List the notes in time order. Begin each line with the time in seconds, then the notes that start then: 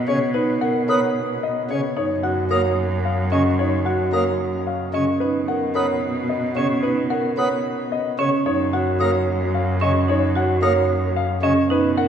Already playing: B2
0.08 C#3 C#5
0.34 D#4 B4
0.61 A#4 F#5
0.88 B3 A#4 C#5 D#6
1.43 D#5
1.71 C#3 C#5
1.97 F#2 D#4 C#5
2.23 F#4 F#5
2.50 A#3 A#4 C#5 D#6
3.05 F5
3.32 C#3 C#4 D#5
3.59 D#4 C#5
3.85 F#4 F#5
4.12 A#3 A#4 C#5 D#6
4.67 F5
4.94 C#3 C#4 D#5
5.20 B2 D#4 B4
5.48 A#4 F#5
5.75 B3 A#4 C#5 D#6
6.29 D#5
6.56 C#3 C#4 C#5
6.83 D#4 B4
7.10 A#4 F#5
7.37 B3 A#4 C#5 D#6
7.92 D#5
8.19 C#3 C#4 C#5
8.46 F#2 D#4 C#5
8.73 F#4 F#5
9.00 A#3 A#4 C#5 D#6
9.54 F5
9.82 C#3 C#4 D#5
10.08 D#4 C#5
10.35 F#4 F#5
10.62 A#3 A#4 C#5 D#6
11.16 F5
11.42 C#3 C#4 D#5
11.70 B2 D#4 B4
11.97 A#4 F#5